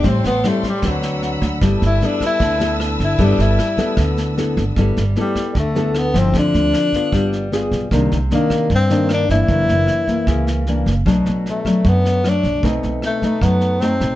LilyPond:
<<
  \new Staff \with { instrumentName = "String section" } { \time 4/4 \key g \major \tempo 4 = 153 <a' g'' c'''>2 <fis'' b'' e'''>2 | <b' a'' e'''>1~ | <b' a'' e'''>1 | r1 |
r1 | r1 | r1 | r1 |
r1 | }
  \new Staff \with { instrumentName = "Tenor saxophone" } { \time 4/4 \key g \major c'8 b8 a8 g8 fis2 | r8 e'8 d'8 e'4. r8 e'8 | d'8 e'4. r2 | r4 g4 a4 b8 c'8 |
d'2. r4 | r4 bes4 c'4 d'8 e'8~ | e'2. r4 | r4 a4 b4 d'4 |
r4 a4 b4 c'4 | }
  \new Staff \with { instrumentName = "Nylon-string guitar" } { \time 4/4 \key g \major << { <g c' e'>8 r8 <g c' e'>8 r8 <c' fis' b'>4. r8 | <b e' a'>4 <b e' a'>4. <b e' a'>4. | <b e' a'>4 r8 <b e' a'>4. <b e' a'>8 r8 | <b e' a'>8 r8 <b e' a'>4 r8 <b e' a'>4 <f c' e'>8~ |
<f c' e'>4. <b f'>4. <b f' aes'>4 | <ees bes d'>8 r8 <ees bes d'>4 r8 <ees bes d'>4 <e bes d'>8~ | <e bes d'>4. <e ais>4. <e ais d'>8 r8 | <fis a d'>4. <fis a d'>4. <fis a d'>8 r8 |
<a c' dis'>4. <a dis'>4. <a c' dis'>4 | } \\ { a,2 d2 | g2 d2 | g2 d2 | g2 d2 |
d2 g2 | c2 g,2 | fis,2 cis2 | b,2 fis,2 |
b,2 fis2 | } >> }
  \new Staff \with { instrumentName = "Upright bass" } { \clef bass \time 4/4 \key g \major a,,8 a,,8 r4 d,4. d,8 | g,,8 g,,8 r4 d,4. g,,8 | g,,8 g,,8 r4 d,4. g,,8 | g,,8 g,,8 r4 d,4. g,,8 |
d,8 d,8 r4 g,,4. b,,8 | c,8 c,8 r4 g,4. g,,8 | fis,,8 fis,,8 r4 cis,4. fis,,8 | b,,8 b,,8 r4 fis,4. b,,8 |
b,,8 b,,8 r4 fis,4. b,,8 | }
  \new DrumStaff \with { instrumentName = "Drums" } \drummode { \time 4/4 <bd sn>8 sn8 <ss sn>8 <bd sn>8 <bd ss sn>8 sn8 sn8 <bd sn>8 | <bd ss sn>8 sn8 sn8 <bd ss sn>8 <bd sn>8 sn8 <ss sn>8 <bd sn>8 | <bd sn>8 sn8 <ss sn>8 <bd sn>8 <bd ss sn>8 sn8 sn8 <bd sn>8 | <bd ss sn>8 sn8 sn8 <bd ss sn>8 <bd sn>8 sn8 <ss sn>8 <bd sn>8 |
<bd sn>8 sn8 <ss sn>8 <bd sn>8 <bd ss sn>8 sn8 sn8 <bd sn>8 | <bd ss sn>8 sn8 sn8 <bd ss sn>8 <bd sn>8 sn8 <ss sn>8 <bd sn>8 | <bd sn>8 sn8 <ss sn>8 <bd sn>8 <bd ss sn>8 sn8 sn8 <bd sn>8 | <bd ss sn>8 sn8 sn8 <bd ss sn>8 <bd sn>8 sn8 <ss sn>8 <bd sn>8 |
<bd sn>8 sn8 <ss sn>8 <bd sn>8 <bd ss sn>8 sn8 sn8 <bd sn>8 | }
>>